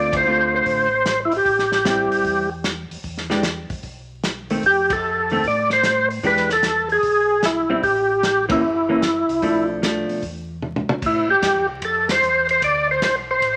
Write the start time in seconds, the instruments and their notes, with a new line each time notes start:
Already playing: tonewheel organ D2 D5, hollow-body jazz guitar D3 A3 C4 F4
0.13 tonewheel organ C5, kick, ride
0.26 hollow-body jazz guitar D3 A3 C4 F4
0.56 tonewheel organ C5
0.66 tonewheel organ A1, kick, open hi-hat
1.06 snare, closed hi-hat
1.25 tonewheel organ E4
1.32 tonewheel organ A1, open hi-hat
1.36 tonewheel organ G4
1.45 tonewheel organ A1, kick, open hi-hat
1.59 snare
1.72 snare
1.85 hollow-body jazz guitar G3 C4 E4, snare, closed hi-hat
2.11 tonewheel organ A#1, open hi-hat
2.25 tonewheel organ E2, kick, open hi-hat
2.64 snare, closed hi-hat
2.90 tonewheel organ E2, open hi-hat
3.04 tonewheel organ E2, kick, open hi-hat
3.17 snare
3.30 hollow-body jazz guitar E3 G#3 D4 G4, snare
3.43 snare, closed hi-hat
3.70 tonewheel organ E2, kick, open hi-hat
3.83 tonewheel organ B1, kick, open hi-hat
4.24 snare, closed hi-hat
4.50 hollow-body jazz guitar D#3 A3 C4, open hi-hat
4.63 tonewheel organ F2 G4, kick, open hi-hat
4.90 tonewheel organ A4, kick, ride
5.30 hollow-body jazz guitar D#3 A3 C4, open hi-hat
5.43 tonewheel organ A2 D5, kick, open hi-hat
5.70 tonewheel organ C5, snare
5.83 snare, closed hi-hat
6.10 open hi-hat
6.23 tonewheel organ E2 B4, hollow-body jazz guitar E3 G#3 D4 G4, kick, open hi-hat
6.37 snare
6.50 tonewheel organ A4, snare
6.63 snare, closed hi-hat
6.89 tonewheel organ G#4, open hi-hat
7.03 tonewheel organ B1, kick, open hi-hat
7.43 tonewheel organ E4, snare, closed hi-hat
7.70 hollow-body jazz guitar G3 C4 E4
7.83 tonewheel organ A1 G4, kick, open hi-hat
8.23 snare, closed hi-hat
8.49 hollow-body jazz guitar E3 A#3 C#4, tonewheel organ E4, kick, ride
8.61 tonewheel organ F#1
8.89 hollow-body jazz guitar E3 A#3 C#4
9.02 snare, closed hi-hat
9.28 tonewheel organ C2, open hi-hat
9.42 tonewheel organ B1, hollow-body jazz guitar F3 A3 D4, kick, open hi-hat
9.82 hollow-body jazz guitar F3 A3 D4, snare, closed hi-hat
10.08 tonewheel organ B2, open hi-hat
10.22 tonewheel organ E2, kick, open hi-hat
10.62 mid tom
10.76 mid tom
10.89 tonewheel organ E2, mid tom
11.02 tonewheel organ A2, kick, crash
11.06 tonewheel organ E4
11.28 tonewheel organ A2 G4
11.42 tonewheel organ G2, kick, snare, hi-hat pedal, ride
11.54 tonewheel organ E2
11.68 tonewheel organ C2
11.82 tonewheel organ F2 A4, kick, ride
12.09 tonewheel organ C5, snare, ride
12.21 tonewheel organ E2, hi-hat pedal
12.49 tonewheel organ C5, ride
12.62 tonewheel organ D2 D5, kick, ride
12.91 tonewheel organ C5
13.02 tonewheel organ B1 C5, kick, snare, hi-hat pedal, ride
13.31 tonewheel organ C5
13.42 tonewheel organ A1, kick, ride